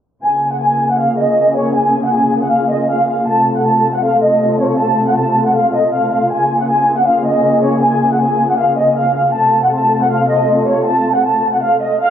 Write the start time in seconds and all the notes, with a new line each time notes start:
0.24 C#3 A#3 F4 G#4 G#5
0.52 F#5
0.62 G#5
0.90 F#5
0.99 F5
1.19 D#5
1.57 C#5
1.76 G#5
2.04 F#5
2.14 G#5
2.42 F#5
2.51 F5
2.70 D#5
2.90 F5
3.09 F5
3.27 C3 A3 A4 A5
3.56 F#5
3.66 A5
3.94 F#5
4.04 F5
4.23 D#5
4.60 C#5
4.79 A5
5.07 F#5
5.18 A5
5.46 F#5
5.55 F5
5.75 D#5
5.93 F5
6.12 F5
6.31 C#3 A#3 G#4 G#5
6.60 F#5
6.69 G#5
6.98 F#5
7.07 F5
7.26 D#5
7.64 C#5
7.83 G#5
8.12 F#5
8.21 G#5
8.50 F#5
8.59 F5
8.78 D#5
8.97 F5
9.16 F5
9.35 C3 A3 F4 A4 A5
9.63 F#5
9.73 A5
10.02 F#5
10.11 F5
10.30 D#5
10.68 C#5
10.87 A5
11.14 F#5
11.25 A5
11.54 F#5
11.63 F5
11.82 D#5
12.01 F5